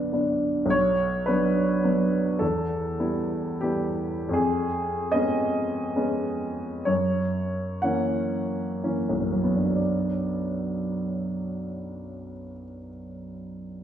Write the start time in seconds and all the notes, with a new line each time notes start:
Already playing: D3 B3 D4 B4
0.12 D3 B3 D4
0.66 B1
0.70 C#5
1.26 F#3 B3 D4 B4
1.84 F#3 B3 D4
2.39 E2 A4
2.99 G3 B3 E4
3.61 G3 B3 E4 G4
4.29 F2
4.33 G#4
5.12 G#3 B3 C#4 D#5
5.96 G#3 B3 C#4
6.85 F#2 C#5
7.82 E3 A#3 C#4 F#5
8.84 E3 A#3 C#4
9.09 B1
9.21 F#2
9.32 F#3
9.43 B3
9.55 D4
9.66 F#4
9.76 D5